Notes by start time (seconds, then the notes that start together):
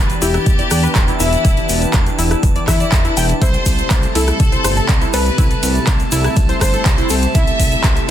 Already playing: E1 E3 B3 D4 G4 B4 A5
0.10 closed hi-hat, shaker
0.22 E1 E4 G4, open hi-hat, shaker
0.34 E4, cross-stick, closed hi-hat, shaker
0.46 E1, kick, closed hi-hat, shaker
0.59 D5, closed hi-hat, shaker
0.71 E2 D5, cross-stick, open hi-hat, shaker
0.83 B4, closed hi-hat, shaker
0.95 E1, kick, clap, closed hi-hat, shaker
1.08 E4, closed hi-hat, shaker
1.20 E1 E4 E5, open hi-hat, shaker
1.33 closed hi-hat, shaker
1.45 E1 E4, kick, closed hi-hat, shaker
1.57 closed hi-hat, shaker
1.69 E1, open hi-hat, shaker
1.82 closed hi-hat, shaker
1.93 E1, kick, clap, closed hi-hat, shaker
2.06 closed hi-hat, shaker
2.19 E1 E4, open hi-hat, shaker
2.31 E4, cross-stick, closed hi-hat, shaker
2.43 E1, kick, closed hi-hat, shaker
2.55 D5, closed hi-hat, shaker
2.67 E2 E4 E5, kick, cross-stick, clap, open hi-hat, shaker
2.80 D5, closed hi-hat, shaker
2.92 E1, kick, clap, closed hi-hat, shaker
3.05 E4, closed hi-hat, shaker
3.17 E1 G5, open hi-hat, shaker
3.29 closed hi-hat, shaker
3.42 C2 C3 G3 A3 E4 C5, kick, closed hi-hat, ride, shaker
3.54 closed hi-hat, shaker
3.66 C2, kick, open hi-hat, ride, shaker
3.78 closed hi-hat, shaker
3.90 C2, kick, clap, closed hi-hat, ride, shaker
4.03 closed hi-hat, shaker
4.15 C2 E4 A4, open hi-hat, ride, shaker
4.28 E4, cross-stick, closed hi-hat, shaker
4.40 C2, kick, closed hi-hat, ride, shaker
4.52 C5, closed hi-hat, shaker
4.64 G1 C5, cross-stick, open hi-hat, ride, shaker
4.77 A4, closed hi-hat, shaker
4.89 C2, kick, clap, closed hi-hat, ride, shaker
5.02 E4, closed hi-hat, shaker
5.13 C2 A4 B4, open hi-hat, ride, shaker
5.26 closed hi-hat, shaker
5.38 C2 E4, kick, closed hi-hat, ride, shaker
5.51 closed hi-hat, shaker
5.63 C2, open hi-hat, ride, shaker
5.75 closed hi-hat, shaker
5.87 C2, kick, clap, closed hi-hat, ride, shaker
5.99 closed hi-hat, shaker
6.12 C2 E4, open hi-hat, ride, shaker
6.24 E4, cross-stick, closed hi-hat, shaker
6.36 C2, kick, closed hi-hat, ride, shaker
6.49 C5, closed hi-hat, shaker
6.61 G1 C5, kick, cross-stick, clap, open hi-hat, ride, shaker
6.73 A4, closed hi-hat, shaker
6.85 C2, kick, clap, closed hi-hat, ride, shaker
6.98 E4, closed hi-hat, shaker
7.09 C2 A4, open hi-hat, ride, shaker
7.22 closed hi-hat, shaker
7.35 C2 E4 E5, kick, closed hi-hat, ride, shaker
7.47 closed hi-hat, shaker
7.59 C2, kick, open hi-hat, ride, shaker
7.72 closed hi-hat, shaker
7.84 C2, kick, clap, closed hi-hat, ride, shaker
7.96 closed hi-hat, shaker